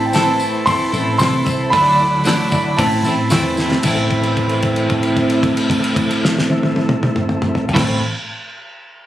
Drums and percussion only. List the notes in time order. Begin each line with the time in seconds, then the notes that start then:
0.13 snare, open hi-hat, tambourine
0.40 tambourine
0.67 kick, open hi-hat, tambourine
0.94 tambourine
1.19 snare, open hi-hat, tambourine
1.46 kick, tambourine
1.73 kick, open hi-hat, tambourine
1.99 tambourine
2.25 snare, open hi-hat, tambourine
2.52 kick, tambourine
2.78 kick, open hi-hat, tambourine
3.04 tambourine
3.30 snare, open hi-hat, tambourine
3.57 snare, tambourine
3.72 snare
3.83 kick, crash, tambourine
4.10 kick, crash
4.23 crash
4.37 kick, crash
4.49 crash
4.62 kick, crash
4.76 crash
4.90 kick, crash
5.03 crash
5.16 kick, crash
5.30 crash
5.43 kick, crash
5.57 crash
5.70 kick, crash
5.84 crash
5.96 kick, crash
6.11 crash
6.25 snare
6.39 snare
6.50 high tom
6.63 high tom
6.76 high tom
6.89 mid tom
7.03 mid tom
7.16 mid tom
7.29 mid tom
7.42 mid tom
7.55 floor tom
7.69 floor tom
7.76 kick, snare, crash